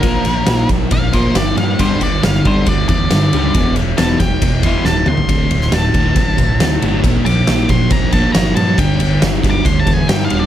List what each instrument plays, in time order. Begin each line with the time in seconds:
Already playing: lead electric guitar A#4
0.03 picked electric bass A#1, distorted electric guitar A#2 F3 A#3, kick, ride
0.25 picked electric bass A#1, distorted electric guitar A#2 F3, ride
0.46 picked electric bass A#1, distorted electric guitar A#2 F3 A#3, snare, ride
0.69 picked electric bass A#1, distorted electric guitar A#2 F3, kick, ride
0.91 picked electric bass A#1, distorted electric guitar A#2 F3, lead electric guitar F5, kick, ride
1.12 distorted electric guitar A#2 F3 A#3, lead electric guitar C5, kick, ride
1.35 picked electric bass G1, distorted electric guitar A#2 F3, lead electric guitar D5, snare, ride
1.55 picked electric bass G2, distorted electric guitar A#2 F3, lead electric guitar F5, ride
1.79 picked electric bass G1, distorted electric guitar G2 D3 G3, lead electric guitar C5, kick, ride
2.01 picked electric bass G1, distorted electric guitar G2 D3, lead electric guitar D5, ride
2.23 picked electric bass G1, distorted electric guitar G2 D3, lead electric guitar F5, snare, ride
2.45 picked electric bass G1, distorted electric guitar G2 D3 G3, lead electric guitar C5, kick, ride
2.66 picked electric bass D2, distorted electric guitar G2 D3, lead electric guitar D5, kick, ride
2.88 picked electric bass E2, distorted electric guitar G2 D3, lead electric guitar D5, kick, ride
3.11 picked electric bass G2, distorted electric guitar G2 D3, snare, ride
3.33 picked electric bass C#2, distorted electric guitar G2 D3 G3, ride
3.54 picked electric bass E1, distorted electric guitar E2 B2 E3, kick, ride
3.75 picked electric bass E1, distorted electric guitar E2 B2, ride
3.98 picked electric bass E1, distorted electric guitar E2 B2 E3, lead electric guitar A5, snare, ride
4.19 picked electric bass E1, distorted electric guitar E2 B2, lead electric guitar G5, kick, snare, ride
4.41 picked electric bass E1, distorted electric guitar E2 B2, kick, ride
4.63 distorted electric guitar E2 B2 E3, lead electric guitar C6, kick, ride
4.85 picked electric bass D1, distorted electric guitar E2 B2, lead electric guitar A5, snare
5.06 picked electric bass D2, distorted electric guitar E2 B2, lead electric guitar C6, mid tom
5.17 floor tom
5.29 picked electric bass D1, distorted electric guitar D2 A2 D3, kick, ride
5.50 picked electric bass D1, distorted electric guitar D2 A2, ride
5.61 snare
5.71 picked electric bass D1, distorted electric guitar D2 A2, lead electric guitar A5, snare, ride
5.94 picked electric bass D1, distorted electric guitar D2 A2 D3, kick, ride
6.15 picked electric bass A1, distorted electric guitar D2 A2, kick, ride
6.37 picked electric bass B1, distorted electric guitar D2 A2, kick, ride
6.60 picked electric bass D2, distorted electric guitar D2 A2, snare, ride
6.81 picked electric bass G1, distorted electric guitar D2 A2 D3, ride
7.03 picked electric bass A#1, distorted electric guitar A#2 F3 A#3, kick, ride
7.25 picked electric bass A#1, distorted electric guitar A#2 F3, lead electric guitar D6, ride
7.47 picked electric bass A#1, distorted electric guitar A#2 F3 A#3, snare, ride
7.68 picked electric bass A#1, distorted electric guitar A#2 F3, lead electric guitar C6, kick, ride
7.90 picked electric bass A#1, distorted electric guitar A#2 F3, lead electric guitar A#5, kick, ride
8.12 distorted electric guitar A#2 F3 A#3, lead electric guitar A5, kick, ride
8.32 picked electric bass G1, distorted electric guitar A#2 F3, lead electric guitar A#5, snare, ride
8.56 picked electric bass G2, distorted electric guitar A#2 F3, lead electric guitar A5, ride
8.78 picked electric bass G1, distorted electric guitar G2 D3 G3, lead electric guitar G5, kick, ride
9.00 picked electric bass G1, distorted electric guitar G2 D3, ride
9.22 picked electric bass G1, distorted electric guitar G2 D3, snare, ride
9.43 picked electric bass G1, distorted electric guitar G2 D3 G3, kick, snare, ride
9.51 lead electric guitar D6
9.65 picked electric bass D2, distorted electric guitar G2 D3, lead electric guitar C6, kick, ride
9.80 lead electric guitar A5
9.86 picked electric bass E2, distorted electric guitar G2 D3, kick, ride
9.93 lead electric guitar G#5
10.08 picked electric bass G2, distorted electric guitar G2 D3, lead electric guitar G5, snare, ride
10.25 lead electric guitar F5
10.30 picked electric bass D#1, distorted electric guitar G2 D3 G3, ride
10.40 lead electric guitar D5